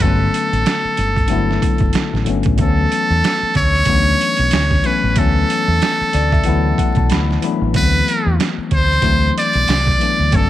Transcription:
0.00 fingered electric bass G1, tine electric piano D3 F#3 A3 B3 C#4, muted trumpet A4, kick, closed hi-hat
0.34 closed hi-hat
0.53 fingered electric bass A1, closed hi-hat
0.66 finger snap, snare, closed hi-hat
0.85 muted fingered electric bass stroke
0.97 fingered electric bass G1, closed hi-hat
1.17 kick, closed hi-hat
1.28 fingered electric bass G1, tine electric piano D3 F#3 A3 B3, closed hi-hat
1.32 tine electric piano E4
1.51 snare
1.62 kick, closed hi-hat
1.78 fingered electric bass F#1, kick, closed hi-hat
1.93 finger snap, snare, closed hi-hat
2.13 fingered electric bass A1, snare
2.25 fingered electric bass G1, tine electric piano D3 F#3 A3 B3, closed hi-hat
2.30 tine electric piano C#4
2.43 fingered electric bass A1, kick, closed hi-hat
2.57 fingered electric bass D2, tine electric piano E3 F#3 A3 B3, muted trumpet A4, kick, closed hi-hat
2.62 tine electric piano C#4
2.92 closed hi-hat
3.10 fingered electric bass E2
3.24 finger snap, snare, closed hi-hat
3.43 muted fingered electric bass stroke
3.55 fingered electric bass D2, muted trumpet C#5, kick, closed hi-hat
3.75 closed hi-hat
3.85 fingered electric bass D2, tine electric piano E3 F#3 A3 B3, kick, closed hi-hat
3.90 tine electric piano C#4
3.97 tine electric piano D4
4.21 closed hi-hat
4.37 fingered electric bass B1, closed hi-hat
4.51 fingered electric bass D2, finger snap, snare, closed hi-hat
4.71 kick, snare
4.82 tine electric piano E3 F#3 A3 B3, muted trumpet B4, closed hi-hat
4.87 tine electric piano C#4
5.03 fingered electric bass A1
5.15 fingered electric bass D2, tine electric piano E3 F#3 A3 B3, kick, closed hi-hat
5.19 tine electric piano C#4, muted trumpet A4
5.50 closed hi-hat
5.68 fingered electric bass E2
5.82 finger snap, snare, closed hi-hat
6.01 muted fingered electric bass stroke
6.13 fingered electric bass D2, tine electric piano D5, closed hi-hat
6.32 tine electric piano E5, kick, closed hi-hat
6.44 fingered electric bass D2, tine electric piano E3 F#3 A3 F#5, closed hi-hat
6.48 tine electric piano B3 E4
6.78 tine electric piano F#5, kick, closed hi-hat
6.95 fingered electric bass B1, tine electric piano A5, kick, closed hi-hat
7.10 fingered electric bass D2, tine electric piano B5, finger snap, snare, closed hi-hat
7.31 snare
7.41 tine electric piano E3 F#3 A3 B3 B5, closed hi-hat
7.46 tine electric piano D4
7.62 fingered electric bass A1
7.74 fingered electric bass D2, tine electric piano E3 F#3 A3 B3, muted trumpet B4, kick, closed hi-hat
7.78 tine electric piano C4
8.08 closed hi-hat
8.26 fingered electric bass E2
8.40 finger snap, snare, closed hi-hat
8.58 muted fingered electric bass stroke
8.71 fingered electric bass D2, muted trumpet C5, kick, closed hi-hat
8.92 closed hi-hat
9.02 fingered electric bass D2, tine electric piano E3 F#3 A3 D4, kick, closed hi-hat
9.06 tine electric piano C4
9.38 muted trumpet D5, closed hi-hat
9.53 fingered electric bass B1, closed hi-hat
9.68 fingered electric bass C2, finger snap, snare, closed hi-hat
9.87 kick, snare
9.98 tine electric piano E3 F#3 A3 B3, closed hi-hat
10.03 tine electric piano D4
10.19 fingered electric bass D2
10.31 fingered electric bass G1, tine electric piano D3 F#3 A3 B3, kick, closed hi-hat
10.35 tine electric piano C#4, muted trumpet A4

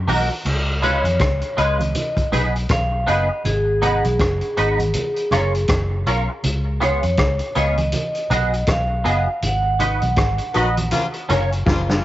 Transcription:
0.07 fingered electric bass B1, clean electric guitar A#3 D#4 F#4 A#4, open hi-hat, high conga
0.29 muted clean electric guitar stroke
0.45 fingered electric bass C#2, crash, low conga
0.82 clean electric guitar G#3 C#4 F4 B4, vibraphone C#5, closed hi-hat, low conga
1.04 fingered electric bass F2, closed hi-hat, high conga
1.19 fingered electric bass C#2, kick, cross-stick, closed hi-hat
1.41 closed hi-hat
1.57 fingered electric bass C#2, clean electric guitar G#3 C#4 F4 B4, vibraphone D#5, closed hi-hat
1.79 closed hi-hat, high conga
1.95 closed hi-hat, high conga, low conga
2.17 kick, closed hi-hat
2.32 fingered electric bass B1, clean electric guitar B3 D#4 G#4 B4, closed hi-hat, low conga
2.56 closed hi-hat
2.69 fingered electric bass B1, vibraphone F5, kick, cross-stick, closed hi-hat, high conga
3.07 fingered electric bass F#1, clean electric guitar B3 D#4 G#4 B4, vibraphone D#5, closed hi-hat
3.45 fingered electric bass G#1, vibraphone G#4, closed hi-hat, low conga
3.82 clean electric guitar B3 D#4 F#4 B4, closed hi-hat, low conga
4.04 fingered electric bass B1, closed hi-hat, high conga
4.19 fingered electric bass F#1, kick, cross-stick, closed hi-hat
4.41 closed hi-hat
4.57 fingered electric bass G#1, clean electric guitar B3 D#4 F#4 B4, closed hi-hat
4.79 closed hi-hat, high conga
4.94 closed hi-hat, high conga, low conga
5.16 closed hi-hat
5.31 fingered electric bass F#1, clean electric guitar C#4 F4 A#4 C#5, cross-stick, closed hi-hat, low conga
5.55 closed hi-hat
5.68 fingered electric bass F#1, kick, cross-stick, closed hi-hat, high conga
6.07 fingered electric bass B1, clean electric guitar C#4 F4 A#4 C#5, closed hi-hat
6.29 muted clean electric guitar stroke
6.44 fingered electric bass C#2, closed hi-hat, low conga
6.81 clean electric guitar B3 F4 G#4 C#5, vibraphone C#5, closed hi-hat, low conga
7.03 fingered electric bass F2, closed hi-hat, high conga
7.17 fingered electric bass C#2, kick, cross-stick, closed hi-hat
7.39 closed hi-hat
7.55 fingered electric bass C#2, clean electric guitar B3 F4 G#4 C#5, vibraphone D#5, closed hi-hat
7.78 closed hi-hat, high conga
7.92 closed hi-hat, high conga, low conga
8.15 closed hi-hat
8.30 fingered electric bass B1, clean electric guitar B3 F#4 G#4 D#5, closed hi-hat, low conga
8.53 closed hi-hat
8.67 fingered electric bass B1, vibraphone F5, kick, cross-stick, closed hi-hat, high conga
9.04 fingered electric bass F#1, clean electric guitar B3 F#4 G#4 D#5, closed hi-hat
9.42 fingered electric bass G#1, vibraphone F#5, closed hi-hat, low conga
9.79 clean electric guitar D#4 F#4 B4 D#5, closed hi-hat, low conga
10.02 fingered electric bass B1, closed hi-hat, high conga
10.16 fingered electric bass G#1, kick, cross-stick, closed hi-hat, high conga
10.38 closed hi-hat
10.54 fingered electric bass A#1, horn section D#3 F#3 B3 F#4, clean electric guitar D#4 F#4 B4 D#5, closed hi-hat
10.77 closed hi-hat, high conga
10.91 horn section C#3 F3 A#3 F4, closed hi-hat, high conga, low conga
11.13 closed hi-hat
11.29 fingered electric bass F#1, clean electric guitar C#4 F4 A#4 C#5, cross-stick, closed hi-hat, low conga
11.52 closed hi-hat
11.66 fingered electric bass F#1, horn section C#3 F3 A#3 F4, kick, snare, high conga
11.89 snare

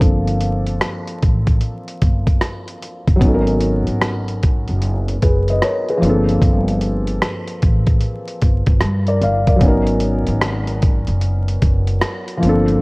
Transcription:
Already playing: felt piano F3 A#3 C4 D4 A4
0.01 upright bass G1, kick, closed hi-hat
0.27 closed hi-hat
0.41 closed hi-hat
0.67 closed hi-hat
0.81 cross-stick, closed hi-hat
1.08 closed hi-hat
1.23 upright bass A1, kick, closed hi-hat
1.47 kick, closed hi-hat
1.61 closed hi-hat
1.88 closed hi-hat
2.02 upright bass G1, kick, closed hi-hat
2.27 kick, closed hi-hat
2.41 cross-stick, closed hi-hat
2.68 closed hi-hat
2.82 closed hi-hat
3.08 upright bass G1, kick, closed hi-hat
3.16 felt piano F#3 B3
3.21 upright bass G#1, felt piano C#4 D#4, kick, closed hi-hat
3.28 felt piano A4
3.35 felt piano A#4
3.47 closed hi-hat
3.61 closed hi-hat
3.87 upright bass G#1, closed hi-hat
4.01 cross-stick, closed hi-hat
4.28 closed hi-hat
4.42 kick, closed hi-hat
4.67 upright bass F#1, closed hi-hat
4.81 closed hi-hat
5.08 closed hi-hat
5.22 upright bass F#1, felt piano G#4 B4, kick, closed hi-hat
5.48 felt piano B4 D#5, closed hi-hat
5.62 felt piano A#4 C#5, cross-stick, closed hi-hat
5.89 felt piano G#4 B4, closed hi-hat
5.98 felt piano F3 A#3
6.02 upright bass G1, felt piano C4, closed hi-hat
6.06 felt piano D4 A4
6.29 closed hi-hat
6.42 upright bass G1, kick, closed hi-hat
6.68 closed hi-hat
6.81 closed hi-hat
7.07 closed hi-hat
7.22 cross-stick, closed hi-hat
7.47 closed hi-hat
7.62 upright bass A1, kick, closed hi-hat
7.87 kick, closed hi-hat
8.01 closed hi-hat
8.28 closed hi-hat
8.41 upright bass G1, kick, closed hi-hat
8.66 upright bass G1, kick, closed hi-hat
8.81 upright bass G2, cross-stick, closed hi-hat
9.07 felt piano A#4 D5, closed hi-hat
9.22 upright bass G1, felt piano D5 F5, closed hi-hat
9.47 felt piano A#4 D5, kick, closed hi-hat
9.56 felt piano F#3 B3
9.61 upright bass G#1, felt piano C#4, kick, closed hi-hat
9.65 felt piano D#4 A#4
9.87 closed hi-hat
10.00 closed hi-hat
10.27 upright bass G#1, closed hi-hat
10.41 cross-stick, closed hi-hat
10.68 closed hi-hat
10.82 kick, closed hi-hat
11.07 upright bass F#1, closed hi-hat
11.21 closed hi-hat
11.48 closed hi-hat
11.62 upright bass F#1, kick, closed hi-hat
11.87 closed hi-hat
12.02 cross-stick, closed hi-hat
12.28 closed hi-hat
12.37 felt piano F3 A#3
12.42 upright bass G1, felt piano C4 D4, closed hi-hat
12.49 felt piano A4
12.68 closed hi-hat

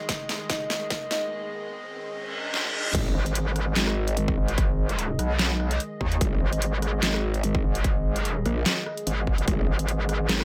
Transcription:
Already playing: ambient pad D#3 G#3 G#4 D#5, grand piano D#4 D#5, riser
0.09 kick, snare, closed hi-hat
0.29 snare, closed hi-hat
0.50 grand piano D#4 D#5, kick, snare, closed hi-hat
0.70 snare, closed hi-hat
0.90 kick, snare, closed hi-hat
1.11 grand piano D#4 D#5, snare, closed hi-hat
2.13 reverse cymbal
2.54 snare
2.65 high tom
2.74 mid tom
2.85 mid tom
2.94 wobble bass G#1, ambient pad D#3 G#3 G#4 D#5, kick, closed hi-hat, crash
3.15 wobble bass G#1
3.26 closed hi-hat
3.35 closed hi-hat
3.56 cross-stick, closed hi-hat
3.76 wobble bass G#1, snare, clap, closed hi-hat
3.87 cross-stick
4.08 closed hi-hat
4.17 closed hi-hat
4.28 kick
4.38 wobble bass G#1
4.48 closed hi-hat
4.58 kick, closed hi-hat
4.89 closed hi-hat
4.99 closed hi-hat
5.19 wobble bass B1, cross-stick, closed hi-hat
5.39 snare, clap, closed hi-hat
5.60 cross-stick
5.71 closed hi-hat
5.80 closed hi-hat
6.01 wobble bass D#2, kick
6.12 closed hi-hat
6.21 wobble bass G#1, kick, closed hi-hat
6.41 wobble bass G#1
6.53 closed hi-hat
6.62 closed hi-hat
6.82 cross-stick, closed hi-hat
7.03 wobble bass G#1, snare, clap, closed hi-hat
7.14 cross-stick
7.34 closed hi-hat
7.44 closed hi-hat
7.55 kick
7.64 wobble bass G#1
7.75 closed hi-hat
7.84 kick, closed hi-hat
8.16 closed hi-hat
8.25 closed hi-hat
8.46 wobble bass A#1, cross-stick, closed hi-hat
8.66 snare, clap, closed hi-hat
8.86 cross-stick
8.97 closed hi-hat
9.07 wobble bass G#1, closed hi-hat
9.27 kick
9.38 wobble bass G#1, closed hi-hat
9.48 wobble bass G#1, ambient pad B4, kick, closed hi-hat
9.68 wobble bass G#1
9.79 closed hi-hat
9.88 closed hi-hat
10.09 cross-stick, closed hi-hat
10.29 wobble bass G#1, snare, clap, closed hi-hat
10.40 cross-stick

